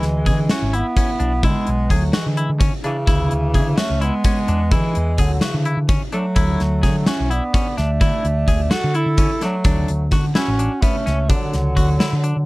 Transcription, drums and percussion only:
0.03 snare, closed hi-hat
0.26 kick, closed hi-hat
0.49 snare, closed hi-hat
0.73 closed hi-hat
0.97 kick, closed hi-hat
1.20 closed hi-hat
1.43 kick, closed hi-hat
1.67 closed hi-hat
1.90 kick, closed hi-hat
2.13 snare, closed hi-hat
2.37 closed hi-hat
2.60 kick, closed hi-hat
2.84 closed hi-hat
3.07 kick, closed hi-hat
3.31 closed hi-hat
3.54 kick, closed hi-hat
3.78 snare, closed hi-hat
4.01 closed hi-hat
4.24 kick, closed hi-hat
4.48 closed hi-hat
4.71 kick, closed hi-hat
4.95 closed hi-hat
5.18 kick, closed hi-hat
5.41 snare, closed hi-hat
5.65 closed hi-hat
5.89 kick, closed hi-hat
6.12 closed hi-hat
6.36 kick, closed hi-hat
6.60 snare, closed hi-hat
6.83 kick, snare, closed hi-hat
7.06 snare, closed hi-hat
7.31 closed hi-hat
7.54 kick, snare, closed hi-hat
7.78 snare, closed hi-hat
8.01 kick, closed hi-hat
8.25 closed hi-hat
8.48 kick, closed hi-hat
8.71 snare, closed hi-hat
8.94 closed hi-hat
9.18 kick, closed hi-hat
9.41 snare, closed hi-hat
9.64 kick, closed hi-hat
9.88 closed hi-hat
10.11 kick, snare, closed hi-hat
10.35 snare, closed hi-hat
10.59 closed hi-hat
10.82 kick, closed hi-hat
11.07 snare, closed hi-hat
11.30 kick, closed hi-hat
11.53 snare, closed hi-hat
11.77 kick, closed hi-hat
12.00 snare, closed hi-hat
12.24 closed hi-hat

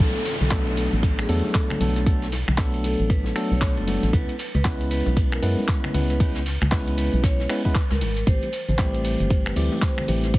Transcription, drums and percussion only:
0.00 closed hi-hat, ride, shaker
0.15 closed hi-hat, high bongo, shaker
0.25 snare, open hi-hat, ride, shaker
0.41 closed hi-hat, low conga, shaker
0.50 kick, snare, clap, closed hi-hat, ride, high bongo, shaker
0.67 closed hi-hat
0.77 open hi-hat, ride, shaker
0.93 closed hi-hat, shaker
1.02 kick, closed hi-hat, ride, high bongo, shaker
1.19 finger snap, shaker
1.28 open hi-hat, shaker
1.44 high bongo, high conga, shaker
1.54 kick, snare, clap, closed hi-hat, shaker
1.70 finger snap, closed hi-hat, high conga, low conga
1.80 open hi-hat, ride, high conga, low conga, shaker
1.96 snare, closed hi-hat, high bongo, shaker
2.06 kick, closed hi-hat, ride, shaker
2.22 snare, closed hi-hat, shaker
2.32 snare, open hi-hat, ride, high bongo, shaker
2.48 finger snap, low conga, shaker
2.57 kick, snare, clap, closed hi-hat, ride, shaker
2.74 closed hi-hat
2.84 open hi-hat, ride, high bongo, shaker
3.00 closed hi-hat, shaker
3.09 kick, closed hi-hat, ride, shaker
3.24 snare, high bongo, shaker
3.36 finger snap, open hi-hat, ride, shaker
3.52 high conga, shaker
3.61 kick, snare, clap, closed hi-hat, ride, shaker
3.77 closed hi-hat, high bongo, high conga
3.87 open hi-hat, ride, high conga, shaker
4.03 snare, closed hi-hat, shaker
4.13 kick, closed hi-hat, ride, high bongo, shaker
4.29 closed hi-hat, shaker
4.39 snare, open hi-hat, ride, shaker
4.55 closed hi-hat, low conga, shaker
4.64 kick, snare, clap, closed hi-hat, shaker
4.81 closed hi-hat
4.90 open hi-hat, ride, shaker
5.06 closed hi-hat, high bongo, shaker
5.17 kick, closed hi-hat, ride, shaker
5.32 finger snap, shaker
5.43 open hi-hat, shaker
5.58 high bongo, high conga, shaker
5.68 kick, snare, clap, closed hi-hat, shaker
5.84 finger snap, closed hi-hat, high conga, low conga
5.94 open hi-hat, ride, high bongo, high conga, low conga, shaker
6.10 snare, closed hi-hat, shaker
6.20 kick, closed hi-hat, ride, shaker
6.35 snare, closed hi-hat, shaker
6.46 snare, open hi-hat, ride, high bongo, shaker
6.62 finger snap, closed hi-hat, low conga, shaker
6.71 kick, snare, clap, closed hi-hat, ride, shaker
6.88 closed hi-hat, high bongo
6.98 open hi-hat, ride, shaker
7.13 closed hi-hat, shaker
7.23 kick, snare, closed hi-hat, ride, shaker
7.39 snare, high bongo, shaker
7.50 finger snap, snare, open hi-hat, ride, shaker
7.65 kick, high conga, shaker
7.75 kick, snare, clap, closed hi-hat, ride, high bongo, shaker
7.90 snare, closed hi-hat, ride, high conga
8.01 open hi-hat, ride, high conga, shaker
8.16 snare, closed hi-hat, shaker
8.27 kick, closed hi-hat, ride, shaker
8.43 closed hi-hat, high bongo, shaker
8.52 snare, open hi-hat, ride, shaker
8.69 closed hi-hat, low conga, shaker
8.78 kick, snare, clap, closed hi-hat, ride, high bongo, shaker
8.94 closed hi-hat
9.05 open hi-hat, ride, shaker
9.20 closed hi-hat, shaker
9.30 kick, closed hi-hat, ride, high bongo, shaker
9.46 finger snap, shaker
9.56 open hi-hat, shaker
9.72 high bongo, high conga, shaker
9.82 kick, snare, clap, closed hi-hat, ride, shaker
9.98 finger snap, closed hi-hat, high conga, low conga
10.08 open hi-hat, ride, high conga, low conga, shaker
10.24 snare, closed hi-hat, high bongo, shaker
10.34 kick, closed hi-hat, ride, shaker

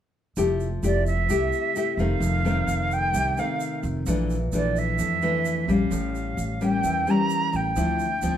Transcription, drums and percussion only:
0.37 shaker
0.60 shaker
0.83 shaker
1.06 shaker
1.29 shaker
1.53 shaker
1.76 shaker
1.99 shaker
2.22 shaker
2.45 shaker
2.68 shaker
2.91 shaker
3.14 shaker
3.37 shaker
3.60 shaker
3.83 shaker
4.06 shaker
4.30 shaker
4.52 shaker
4.76 shaker
4.99 shaker
5.22 shaker
5.45 shaker
5.69 shaker
5.91 shaker
6.15 shaker
6.38 shaker
6.61 shaker
6.84 shaker
7.07 shaker
7.30 shaker
7.53 shaker
7.76 shaker
7.99 shaker
8.22 shaker

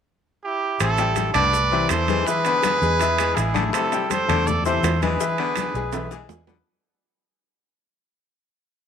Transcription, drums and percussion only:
0.80 high bongo, high conga, high timbale, maracas
0.98 high conga, high timbale, maracas
1.16 high bongo, high conga, high timbale, maracas
1.34 high conga, low conga, high timbale, maracas
1.53 high bongo, high conga, maracas
1.72 high conga
1.89 high bongo, low bongo, high conga, high timbale, maracas
2.08 high conga, high timbale, maracas
2.27 high bongo, high conga, maracas
2.45 high bongo, high conga, high timbale, maracas
2.63 high bongo, high conga, high timbale, maracas
2.82 high bongo, high conga, maracas
3.00 high bongo, high conga, high timbale, maracas
3.18 high conga, high timbale, maracas
3.37 high bongo, low bongo, high conga, high timbale, maracas
3.55 high bongo, high conga, high timbale, maracas
3.73 high bongo, high conga, high timbale, maracas
3.92 high conga, high timbale, maracas
4.10 high bongo, high conga, high timbale, maracas
4.29 high conga, low conga, high timbale, maracas
4.47 high bongo, high conga, low conga, maracas
4.65 high conga, maracas
4.84 high bongo, low bongo, high conga, high timbale, low timbale, maracas
5.02 high conga, high timbale, maracas
5.20 high bongo, high conga, maracas
5.38 high conga, high timbale
5.56 high conga, high timbale, maracas
5.75 low bongo, high conga, maracas
5.92 low bongo, high conga, high timbale, maracas
6.11 low bongo, high conga, maracas
6.29 low bongo, high conga, low timbale, maracas
6.47 low bongo, high conga, low timbale, maracas

